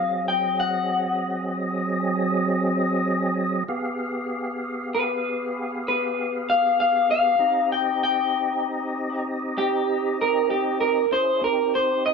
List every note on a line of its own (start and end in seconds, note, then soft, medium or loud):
0.00 3.63 F#3 medium
0.00 3.63 C4 medium
0.00 3.64 G#4 medium
0.00 3.63 D#5 medium
0.00 0.25 F5 medium
0.28 0.57 G5 medium
0.60 1.79 F#5 medium
3.68 7.36 B3 medium
3.68 7.36 G4 medium
3.68 7.36 G#4 medium
3.68 7.36 F5 medium
4.95 5.83 B4 medium
5.88 6.46 B4 medium
6.50 6.78 F5 medium
6.80 7.09 F5 medium
7.11 7.69 F5 medium
7.38 11.07 C4 medium
7.38 11.06 D#4 medium
7.38 11.06 G4 medium
7.38 11.06 D#5 medium
7.72 8.01 G5 medium
8.04 9.22 G5 medium
9.58 10.17 G4 loud
10.21 10.49 A#4 medium
10.50 10.79 G4 medium
10.81 11.10 A#4 medium
11.11 11.42 C#4 medium
11.11 11.42 E4 medium
11.11 11.42 G#4 medium
11.11 11.41 C5 medium
11.42 12.14 C4 medium
11.42 12.14 D#4 medium
11.42 12.14 G4 medium
11.42 11.73 A#4 medium
11.75 12.04 C5 medium
12.06 12.14 D#5 medium